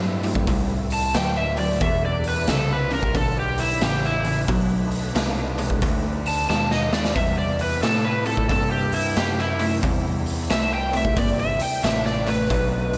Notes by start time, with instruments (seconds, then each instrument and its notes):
Already playing: picked electric bass G2, overdriven electric guitar A2 F#3, tonewheel organ G3 A3 C4 E4
0.23 overdriven electric guitar A2 F#3, open hi-hat
0.35 kick
0.47 picked electric bass C2, overdriven electric guitar A2 G3, kick, open hi-hat
0.90 electric slide guitar A5, open hi-hat
1.14 picked electric bass D2, overdriven electric guitar A2 F#3, electric slide guitar G5, snare, open hi-hat
1.37 electric slide guitar E5
1.57 overdriven electric guitar A2 F#3, electric slide guitar D5, open hi-hat
1.80 picked electric bass E2, overdriven electric guitar E2 B2, tonewheel organ G3 D4 E4 B4, electric slide guitar E5, kick, open hi-hat
2.05 electric slide guitar D5
2.24 electric slide guitar B4, open hi-hat
2.47 picked electric bass C2, overdriven electric guitar E2 C#3, electric slide guitar A4, snare, open hi-hat
2.73 electric slide guitar B4
2.90 overdriven electric guitar E2 C#3, electric slide guitar A#4, open hi-hat
3.03 kick
3.15 picked electric bass B1, overdriven electric guitar E2 D3, electric slide guitar A4, kick, open hi-hat
3.39 electric slide guitar G4
3.58 electric slide guitar E4, open hi-hat
3.81 picked electric bass A1, overdriven electric guitar E2 C#3, electric slide guitar G4, snare, open hi-hat
4.04 electric slide guitar E4, snare
4.24 overdriven electric guitar E2 C#3, open hi-hat
4.48 picked electric bass B1, overdriven electric guitar B2 F#3, tonewheel organ A3 D4 D#4 B4, kick, open hi-hat
4.91 open hi-hat
5.15 picked electric bass C2, overdriven electric guitar B2 G#3, snare, open hi-hat
5.58 overdriven electric guitar B2 G#3, open hi-hat
5.70 kick
5.82 picked electric bass D2, overdriven electric guitar B2 A3, kick, open hi-hat
6.26 electric slide guitar A5, open hi-hat
6.49 picked electric bass D#2, overdriven electric guitar B2 G#3, electric slide guitar A5, snare
6.71 electric slide guitar D#5, snare
6.93 overdriven electric guitar B2 G#3, electric slide guitar D5, snare
7.05 snare
7.14 picked electric bass E2, overdriven electric guitar C3 G3, tonewheel organ C4 E4 G4 A#4, electric slide guitar E5, kick, open hi-hat
7.38 electric slide guitar D5
7.59 electric slide guitar B4, open hi-hat
7.83 picked electric bass A2, overdriven electric guitar C3 A3, electric slide guitar A4, snare, open hi-hat
8.05 electric slide guitar B4
8.26 overdriven electric guitar C3 A3, electric slide guitar A4, open hi-hat
8.37 kick
8.49 picked electric bass G2, overdriven electric guitar C3 A#3, electric slide guitar A4, kick, open hi-hat
8.71 electric slide guitar G4
8.92 electric slide guitar E4, open hi-hat
9.16 picked electric bass F#2, overdriven electric guitar C3 A3, electric slide guitar G4, snare, open hi-hat
9.39 electric slide guitar E4, snare
9.59 overdriven electric guitar C3 A3, open hi-hat
9.83 picked electric bass E2, overdriven electric guitar C3 G3, tonewheel organ G3 A#3 C4 E4, kick, open hi-hat
10.26 open hi-hat
10.50 picked electric bass C2, overdriven electric guitar C3 A3, electric slide guitar E5, snare, open hi-hat
10.74 electric slide guitar G5
10.93 overdriven electric guitar C3 A3, electric slide guitar E5, open hi-hat
11.05 kick
11.17 picked electric bass G1, overdriven electric guitar C3 A#3, electric slide guitar D5, kick, open hi-hat
11.40 electric slide guitar E5
11.60 electric slide guitar G5, muted picked electric bass stroke, open hi-hat
11.83 picked electric bass A1, overdriven electric guitar C3 A3, electric slide guitar E5, snare, open hi-hat
12.06 electric slide guitar D5, snare
12.27 overdriven electric guitar C3 A3, electric slide guitar B4, open hi-hat
12.50 picked electric bass B1, overdriven electric guitar B2 F#3, tonewheel organ A3 D4 D#4 B4, kick, open hi-hat
12.93 open hi-hat